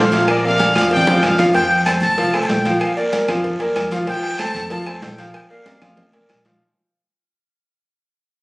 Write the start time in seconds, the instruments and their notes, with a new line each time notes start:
Already playing: upright bass A#1, trumpet section C5 F5
0.12 trombone section C3, grand piano F3 F4 F5, cowbell, high conga, low agogo, short guiro
0.28 trumpet section A#4 D5, cowbell, high conga, low agogo, long guiro, claves
0.43 trombone section C3, grand piano A#3 A#4 D5, trumpet section D5 F5, high conga
0.59 trombone section D3, cowbell, high conga, low timbale, low agogo, short guiro
0.75 upright bass F2, grand piano F3 F4 F5, trumpet section D5 F5, cowbell, high conga, low agogo, short guiro, claves
0.91 trumpet section D5 G5, cowbell, high bongo, long guiro
0.97 low conga
1.07 upright bass E2, grand piano F3 F4 F5, trombone section F3, cowbell, low bongo, low conga, low agogo
1.18 low conga
1.23 upright bass F2, trumpet section D5 F5, cowbell, low timbale, low agogo, short guiro, claves
1.28 low conga
1.38 grand piano F3 F4 F5, flute F5, cowbell, low bongo, low conga, short guiro
1.49 low conga
1.54 upright bass F2, grand piano F3 F4 F5, flute G5, cowbell, high conga, low agogo, long guiro
1.70 high conga, low agogo
1.85 grand piano A3 A4 C5, flute A5, cowbell, high conga, low timbale, low agogo, short guiro, claves
2.01 upright bass C2, flute A5, high conga, short guiro
2.18 grand piano F3 F4 F5, cowbell, high conga, low agogo, long guiro
2.33 grand piano A3 A4 C5, high conga, low agogo, claves
2.42 flute A5
2.47 upright bass A#1, flute G5, cowbell, high conga, low timbale, short guiro
2.65 grand piano F3 F4 F5, cowbell, high conga, low agogo, short guiro
2.80 flute F5, cowbell, high conga, low agogo, long guiro, claves
2.96 grand piano A#3 A#4 D5, flute D5, high conga
3.12 grand piano A#3 A#4 D5, cowbell, high conga, low timbale, low agogo, short guiro
3.28 upright bass F2, grand piano F3 F4 F5, cowbell, high conga, low conga, low agogo, short guiro, claves
3.44 cowbell, high conga, low conga, long guiro
3.60 upright bass E2, grand piano A#3 A#4 D5, cowbell, high conga, low agogo
3.76 upright bass F2, cowbell, high conga, low timbale, low agogo, short guiro, claves
3.91 grand piano F3 F4 F5, flute F5, cowbell, high conga, short guiro
4.07 grand piano F3 F4 F5, flute G5, cowbell, high conga, low agogo, long guiro
4.23 high conga, low agogo
4.39 grand piano A3 A4 C5, flute A5, cowbell, high conga, low timbale, low agogo, short guiro, claves
4.55 upright bass F2, high conga, short guiro
4.70 grand piano F3 F4 F5, flute A5, cowbell, high conga, low agogo, long guiro
4.86 grand piano A3 A4 C5, high conga, low agogo, claves
5.02 upright bass A#1, flute G5, cowbell, high conga, low timbale, short guiro
5.18 grand piano F3 F4 F5, cowbell, low agogo, short guiro
5.34 flute G5, cowbell, high conga, low agogo, long guiro, claves
5.50 grand piano A#3 A#4 D5, flute F5, high conga
5.66 grand piano A#3 A#4 D5, cowbell, high conga, high timbale, low agogo, short guiro
5.82 upright bass D2, grand piano F3 F4 F5, cowbell, high conga, low conga, high timbale, low agogo, short guiro, claves
5.97 cowbell, high conga, low conga, high timbale, long guiro
6.13 upright bass C2, grand piano A#3 A#4 D5, cowbell, high conga, low agogo
6.29 upright bass A#1, cowbell, low timbale, low agogo, short guiro, claves
6.45 grand piano F3 F4 F5, cowbell, high conga, low timbale, short guiro